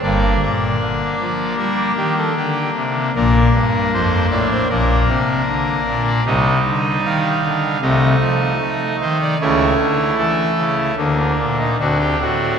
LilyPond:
<<
  \new Staff \with { instrumentName = "Pipe organ" } { \time 4/4 \key bes \major \tempo 4 = 77 << { d''2 bes'8 g'16 a'16 g'8 r8 | bes'4 c''8 d''16 c''16 bes'4.~ bes'16 d''16 | ees''4 f''4 ees''4. c''16 d''16 | cis''4 a'4 d'8. ees'16 fis'16 g'16 fis'8 | } \\ { <bes d'>1 | <bes d'>2 <bes d'>2 | <g ees'>2 <a ees'>2 | <a e'>2 bes4 <c' d'>4 | } >> }
  \new Staff \with { instrumentName = "Pipe organ" } { \clef bass \time 4/4 \key bes \major <g,, g,>8 bes,8 d8 f8 g8 ees8 d8 c8 | <bes,, bes,>8 g,8 f,8 a,8 <bes,, bes,>8 c8 d8 bes,8 | <c, c>8 d8 ees8 d8 <c, c>8 f8 a8 ees8 | <cis, cis>8 d8 e8 cis8 <d, d>8 bes,8 <d, d>8 a,8 | }
>>